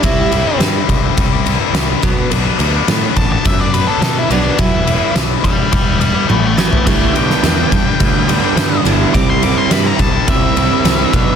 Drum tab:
CC |----------------|----------------|----------------|x---------------|
RD |x-x-x-x-x-x-x-x-|x-x-x-x-x-x-x-x-|x-x-x-x-x-x-----|x-x-x-x-x-x-x-x-|
SD |----o-------o---|----o-------o---|----o---------o-|---oo-------o---|
T1 |----------------|----------------|------------o---|----------------|
FT |----------------|----------------|---------------o|----------------|
BD |o-----o-o-----o-|------o-o-------|o-----o-o-------|o-----o-o-------|

CC |----------------|
RD |x-x-x-x-x-x-x-x-|
SD |----o-------o---|
T1 |----------------|
FT |----------------|
BD |o-----o-o-----o-|